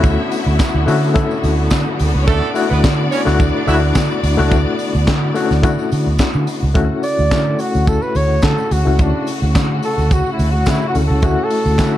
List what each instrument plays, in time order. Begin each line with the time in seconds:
Already playing: string section D3 B3 E4 F#4 E5, reed electric piano A3 C#4 E4 F#4 A4
0.04 fingered electric bass D2, kick, closed hi-hat, tambourine
0.32 open hi-hat, tambourine
0.46 fingered electric bass D2
0.60 kick, snare, clap, closed hi-hat, tambourine
0.74 fingered electric bass D2
0.86 fingered electric bass D3, reed electric piano A3 C#4 E4 F#4, open hi-hat, tambourine
1.04 tambourine
1.14 reed electric piano A3 C#4 E4 A4, kick, closed hi-hat, tambourine
1.31 tambourine
1.44 fingered electric bass D2, open hi-hat, tambourine
1.70 fingered electric bass D3, kick, snare, clap, closed hi-hat, tambourine
1.78 string section D3 D4
1.86 string section E3 E4
1.93 string section F#3 F#4
2.00 fingered electric bass D2, string section G3 G4, open hi-hat, tambourine
2.07 string section A3 A4
2.14 fingered electric bass C#2, string section B3 B4
2.20 string section C#4 C#5
2.27 fingered electric bass D2, horn section A3 A4, string section D4 D5, kick, closed hi-hat, tambourine
2.54 reed electric piano A3 D4 E4 F#4, open hi-hat, tambourine
2.71 fingered electric bass D2, horn section B3 B4
2.84 fingered electric bass D3, kick, snare, clap, closed hi-hat, tambourine
3.12 horn section C#4 C#5, open hi-hat, tambourine
3.25 fingered electric bass D2, reed electric piano A3 D4 E4 F#4, snare, tambourine
3.40 kick, tambourine
3.55 horn section D4 D5
3.67 fingered electric bass D2, reed electric piano A3 D4 E4 F#4, horn section E4 E5, open hi-hat, tambourine
3.95 fingered electric bass D3, kick, snare, clap, closed hi-hat, tambourine
4.11 tambourine
4.23 fingered electric bass D2, open hi-hat, tambourine
4.38 fingered electric bass C#2, reed electric piano A3 D4 E4 F#4
4.52 fingered electric bass D2, kick, closed hi-hat, tambourine
4.79 open hi-hat, tambourine
4.95 fingered electric bass D2
5.07 fingered electric bass D3, kick, snare, clap, closed hi-hat, tambourine
5.34 reed electric piano A3 C#4 E4 F#4, open hi-hat, tambourine
5.51 fingered electric bass D2, snare, tambourine
5.63 fingered electric bass D3, reed electric piano A3 D4 E4 F#4, kick, closed hi-hat, tambourine
5.79 tambourine
5.92 fingered electric bass D3, open hi-hat, tambourine
6.07 fingered electric bass D2
6.18 kick, snare, clap, closed hi-hat, tambourine
6.34 fingered electric bass D3, tambourine
6.47 open hi-hat, tambourine
6.63 fingered electric bass C#2
6.74 fingered electric bass D2, string section C#3 A3 F#4, reed electric piano A3 C#4 E4 F#4, kick, closed hi-hat, tambourine
7.03 flugelhorn D5, open hi-hat, tambourine
7.18 fingered electric bass D2, tambourine
7.31 fingered electric bass D3, reed electric piano A3 C#4 E4 A4, kick, snare, clap, closed hi-hat, tambourine
7.59 flugelhorn F#4, open hi-hat, tambourine
7.74 fingered electric bass D2, tambourine
7.87 reed electric piano A3 C#4 E4 F#4, flugelhorn A4, kick, closed hi-hat, tambourine
8.02 flugelhorn B4, tambourine
8.15 fingered electric bass D2, flugelhorn C#5, open hi-hat, tambourine
8.42 fingered electric bass D3, flugelhorn A4, kick, snare, clap, closed hi-hat, tambourine
8.58 tambourine
8.71 fingered electric bass D2, flugelhorn F#4, open hi-hat, tambourine
8.85 fingered electric bass C#2, reed electric piano A3 C#4 E4 F#4
8.99 fingered electric bass D2, flugelhorn D4, kick, closed hi-hat, tambourine
9.27 open hi-hat, tambourine
9.42 fingered electric bass D2
9.55 fingered electric bass D3, kick, snare, clap, closed hi-hat, tambourine
9.83 flugelhorn A4, open hi-hat, tambourine
9.98 fingered electric bass D2, tambourine
10.11 flugelhorn F#4, kick, closed hi-hat, tambourine
10.26 tambourine
10.32 flugelhorn E4
10.39 fingered electric bass D2, open hi-hat, tambourine
10.52 flugelhorn F#4
10.66 fingered electric bass D3, reed electric piano A3 C#4 E4 F#4, kick, snare, clap, closed hi-hat, tambourine
10.70 flugelhorn E4
10.89 flugelhorn F#4
10.94 fingered electric bass D2, reed electric piano A3 C#4 E4 A4, open hi-hat, tambourine
11.07 fingered electric bass C#2, flugelhorn A4
11.22 fingered electric bass D2, reed electric piano A3 C#4 E4 F#4, flugelhorn F#4, kick, closed hi-hat, tambourine
11.44 flugelhorn A4
11.50 open hi-hat, tambourine
11.66 fingered electric bass D2, tambourine
11.78 fingered electric bass D3, reed electric piano A3 C#4 E4 F#4, kick, snare, clap, closed hi-hat, tambourine